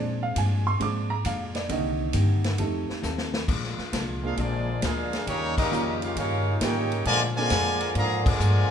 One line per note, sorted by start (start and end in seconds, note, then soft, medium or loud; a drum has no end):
0.00 0.24 A#2 medium
0.00 0.35 A#2 medium
0.00 0.24 F3 medium
0.00 0.24 G#3 medium
0.00 0.63 G#3 medium
0.00 0.63 C4 medium
0.00 0.25 D4 medium
0.00 0.63 D4 medium
0.00 0.22 D5 medium
0.23 0.36 F5 medium
0.35 0.79 G2 loud
0.35 0.67 A#2 medium
0.35 0.68 F3 medium
0.35 0.68 G#3 medium
0.35 0.68 D4 medium
0.35 0.66 G#5 medium
0.35 kick soft
0.35 hi-hat pedal medium
0.35 ride medium
0.67 0.80 C6 loud
0.80 1.24 G#2 loud
0.80 1.12 A#2 medium
0.80 1.12 F3 medium
0.80 1.07 G#3 medium
0.80 1.12 G#3 medium
0.80 1.08 C4 soft
0.80 1.08 D4 medium
0.80 1.13 D4 medium
0.80 1.11 D6 loud
0.80 kick soft
0.80 ride medium
1.10 1.24 A#5 loud
1.25 1.68 F2 loud
1.25 1.57 A#2 medium
1.25 1.57 F3 medium
1.25 1.57 G#3 medium
1.25 1.58 D4 medium
1.25 1.55 F5 medium
1.25 kick soft
1.25 hi-hat pedal medium
1.25 ride medium
1.55 1.69 D5 medium
1.55 snare medium
1.55 ride medium
1.69 2.13 C2 loud
1.69 2.01 C3 soft
1.69 2.55 D3 medium
1.69 2.55 D#3 medium
1.69 2.01 A#3 medium
1.69 2.55 A#3 medium
1.69 2.02 D#4 medium
1.69 2.02 G4 medium
1.69 2.42 D#5 medium
1.69 kick soft
1.69 ride medium
2.13 2.57 G2 loud
2.13 2.46 C3 medium
2.13 2.46 A#3 medium
2.13 2.46 D#4 medium
2.13 2.47 G4 medium
2.13 kick soft
2.13 hi-hat pedal medium
2.13 ride medium
2.44 snare medium
2.44 ride medium
2.58 2.87 F2 medium
2.58 2.90 F3 medium
2.58 3.44 G3 medium
2.58 3.45 A3 medium
2.58 2.91 C4 medium
2.58 2.91 D#4 medium
2.58 3.45 D#4 medium
2.58 2.91 A4 medium
2.58 kick soft
2.58 ride medium
2.90 muted upright bass stroke soft
2.90 snare medium
3.02 3.47 D#2 loud
3.02 3.35 F3 medium
3.02 3.35 C4 medium
3.02 3.35 D#4 medium
3.02 3.36 A4 medium
3.02 snare medium
3.02 hi-hat pedal medium
3.18 snare medium
3.33 snare loud
3.46 3.76 A#1 medium
3.46 3.79 A#2 medium
3.46 5.25 D3 medium
3.46 3.80 F3 medium
3.46 5.24 G#3 medium
3.46 3.80 G#3 medium
3.46 8.71 A#3 medium
3.46 3.81 D4 medium
3.46 5.25 F4 medium
3.46 kick medium
3.46 crash medium
3.64 snare soft
3.78 muted upright bass stroke soft
3.78 snare soft
3.93 4.36 C2 medium
3.93 4.25 A#2 medium
3.93 4.25 F3 medium
3.93 4.25 G#3 medium
3.93 4.25 D4 medium
3.93 kick soft
3.93 snare medium
3.93 hi-hat pedal medium
3.93 ride medium
4.23 4.37 G#3 medium
4.23 4.36 A#3 medium
4.23 4.36 C4 medium
4.23 4.36 D4 medium
4.23 4.37 D4 medium
4.23 4.38 D4 medium
4.23 4.36 F4 medium
4.23 4.37 F4 medium
4.23 4.36 G#4 medium
4.23 4.38 G#4 medium
4.23 4.38 F5 medium
4.27 4.39 A#4 medium
4.36 4.81 A#1 loud
4.36 4.69 A#2 medium
4.36 4.69 F3 medium
4.36 4.82 F3 medium
4.36 4.82 G#3 medium
4.36 4.70 G#3 medium
4.36 4.82 D4 medium
4.36 4.70 D4 medium
4.36 kick soft
4.36 ride medium
4.41 4.84 A#3 medium
4.41 4.84 F4 medium
4.41 4.81 G#4 medium
4.41 4.84 D5 medium
4.82 5.26 D2 loud
4.82 5.14 A#2 medium
4.82 5.14 F3 medium
4.82 5.14 G#3 medium
4.82 5.24 G#3 medium
4.82 5.24 D4 medium
4.82 5.15 D4 medium
4.82 5.25 D4 medium
4.82 5.25 F4 medium
4.82 5.24 G#4 medium
4.82 5.24 A#4 medium
4.82 5.24 F5 loud
4.82 kick soft
4.82 snare medium
4.82 hi-hat pedal medium
4.82 ride medium
5.13 snare medium
5.13 ride medium
5.25 5.70 D#2 loud
5.25 7.03 C#3 medium
5.25 5.58 D#3 soft
5.25 7.03 G3 medium
5.25 5.58 G3 medium
5.25 5.59 A#3 soft
5.25 5.57 A#3 medium
5.25 5.58 A#3 loud
5.25 5.58 C#4 medium
5.25 5.59 C#4 soft
5.25 7.03 D#4 medium
5.25 5.58 D#4 medium
5.25 5.59 G4 medium
5.25 5.57 G4 medium
5.25 5.58 C#5 loud
5.25 kick soft
5.25 ride medium
5.58 6.00 G3 medium
5.58 5.99 A#3 medium
5.58 5.99 C#4 medium
5.58 5.99 D#4 medium
5.58 6.00 G4 medium
5.58 6.00 A#4 medium
5.58 5.99 D#5 medium
5.58 kick medium
5.58 crash medium
5.71 6.15 F2 medium
5.71 6.03 D#3 medium
5.71 6.40 A#3 medium
5.71 6.03 A#3 medium
5.71 6.41 C#4 medium
5.71 6.04 C#4 medium
5.71 6.41 D#4 medium
5.71 6.41 F4 medium
5.71 6.04 G4 medium
5.71 6.41 G4 medium
5.71 hi-hat pedal medium
6.02 6.16 C#4 medium
6.02 6.15 F4 medium
6.02 6.16 G4 medium
6.02 6.16 A#4 medium
6.02 6.16 F5 medium
6.02 ride medium
6.15 6.60 G2 medium
6.15 6.48 D#3 medium
6.15 6.48 A#3 medium
6.15 6.58 A#3 medium
6.15 6.58 C#4 medium
6.15 6.49 C#4 medium
6.15 6.59 D#4 medium
6.15 6.58 F4 medium
6.15 6.49 G4 medium
6.15 6.58 A#4 medium
6.15 6.59 C#5 medium
6.15 6.59 F5 loud
6.15 kick soft
6.15 ride medium
6.60 7.04 G#2 medium
6.60 6.92 D#3 medium
6.60 6.88 A#3 medium
6.60 6.93 A#3 medium
6.60 7.06 A#3 medium
6.60 6.88 C#4 medium
6.60 6.93 C#4 medium
6.60 7.07 C#4 medium
6.60 6.88 D#4 medium
6.60 7.07 D#4 medium
6.60 6.89 F4 medium
6.60 6.89 G4 medium
6.60 6.93 G4 medium
6.60 7.07 G4 medium
6.60 7.06 A#4 medium
6.60 7.07 C#5 medium
6.60 7.07 G5 loud
6.60 kick soft
6.60 snare medium
6.60 hi-hat pedal medium
6.60 ride loud
6.92 ride medium
7.05 7.37 A#2 medium
7.05 7.49 A#2 loud
7.05 8.71 D3 medium
7.05 7.20 D3 loud
7.05 8.71 F3 medium
7.05 7.38 F3 medium
7.05 7.20 F3 loud
7.05 7.38 G#3 medium
7.05 7.20 G#3 loud
7.05 7.38 D4 medium
7.05 8.71 F4 medium
7.05 7.21 F4 loud
7.05 7.20 A#4 loud
7.05 7.21 D5 loud
7.05 7.21 G#5 loud
7.05 kick soft
7.05 ride medium
7.21 snare soft
7.36 7.92 D3 loud
7.36 7.92 F3 loud
7.36 7.92 G#3 loud
7.36 7.49 A#3 medium
7.36 7.49 C4 medium
7.36 7.49 D4 medium
7.36 7.49 F4 medium
7.36 7.92 F4 loud
7.36 7.49 G#4 medium
7.36 7.92 A#4 medium
7.36 7.92 D5 loud
7.36 7.92 G#5 loud
7.36 snare soft
7.50 7.94 F2 loud
7.50 7.82 A#2 medium
7.50 7.82 F3 medium
7.50 7.82 G#3 medium
7.50 7.83 D4 medium
7.50 kick soft
7.50 snare medium
7.50 hi-hat pedal medium
7.50 ride medium
7.80 ride medium
7.95 8.38 G#2 medium
7.95 8.27 A#2 medium
7.95 8.23 D3 loud
7.95 8.23 F3 medium
7.95 8.27 F3 medium
7.95 8.27 G#3 medium
7.95 8.24 A#3 medium
7.95 8.28 D4 medium
7.95 8.24 G#4 medium
7.95 8.25 D5 medium
7.95 8.24 F5 medium
7.95 8.24 A#5 loud
7.95 kick soft
7.95 ride medium
8.25 8.71 D3 medium
8.25 8.71 F3 medium
8.25 8.71 G#3 medium
8.25 8.71 F4 loud
8.25 8.71 A#4 medium
8.25 8.71 D5 medium
8.25 8.71 G#5 loud
8.25 kick loud
8.25 crash medium
8.40 8.68 G2 loud
8.40 8.71 A#2 medium
8.40 8.71 F3 medium
8.40 8.71 G#3 medium
8.40 8.71 D4 medium
8.40 hi-hat pedal medium